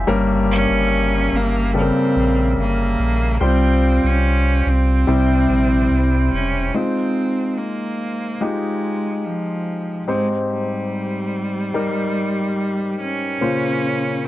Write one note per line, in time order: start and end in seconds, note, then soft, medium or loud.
0.00 0.10 E5 medium
0.00 3.37 E5 medium
0.00 0.10 G#5 medium
0.07 0.66 G1 loud
0.07 1.29 G2 medium
0.07 3.38 C#3 medium
0.07 1.66 G3 medium
0.07 1.66 A#3 medium
0.07 1.66 C#4 medium
0.07 3.38 A#4 medium
0.07 1.66 A#4 loud
0.51 1.37 C#4 loud
0.70 1.29 G1 medium
1.33 1.91 G1 medium
1.33 1.76 A#3 medium
1.74 3.33 C#3 medium
1.74 3.33 G3 medium
1.74 3.33 A#3 medium
1.74 2.55 C4 medium
1.74 1.81 A4 medium
1.81 3.36 A#4 medium
2.16 2.55 A#1 medium
2.58 2.96 G1 medium
2.58 3.38 A#3 medium
2.99 3.38 A#1 medium
3.40 4.00 C2 loud
3.40 4.99 G3 medium
3.40 4.08 C4 loud
3.40 5.06 F4 medium
3.40 5.00 F4 medium
3.40 6.71 C5 soft
3.40 5.00 C5 medium
3.40 5.06 G5 medium
4.04 4.62 C2 medium
4.04 4.69 C#4 medium
4.66 5.05 C2 loud
4.66 6.33 C4 medium
5.07 5.47 C2 medium
5.07 6.29 C3 medium
5.07 6.66 G3 medium
5.07 6.73 E4 medium
5.07 6.66 E4 medium
5.07 6.67 C5 medium
5.07 6.73 G5 medium
5.50 5.88 A#1 medium
5.91 6.30 C2 medium
6.33 6.72 E1 medium
6.33 6.76 C#4 medium
6.74 8.33 G#3 medium
6.74 7.59 C4 medium
6.74 8.33 D#4 medium
6.74 8.33 F4 medium
6.74 8.33 C5 medium
7.58 8.44 A#3 medium
8.41 9.99 G#3 medium
8.41 9.26 G#3 medium
8.41 10.00 D#4 medium
8.41 10.00 F4 medium
8.41 10.00 G4 medium
9.25 10.07 F3 medium
10.08 11.29 G#2 soft
10.08 10.27 G#3 medium
10.08 11.66 C4 medium
10.08 11.66 D#4 medium
10.08 11.66 G4 soft
10.08 11.67 C5 medium
10.51 12.96 G3 medium
11.74 13.33 G3 medium
11.74 13.33 D#4 medium
11.74 13.33 G4 medium
11.74 13.33 A#4 medium
13.00 14.26 C#4 medium
13.41 14.28 A#2 medium
13.41 14.28 C#3 medium
13.41 14.28 A#3 medium
13.41 14.28 F4 medium
13.41 14.28 C5 medium
14.24 14.28 C4 medium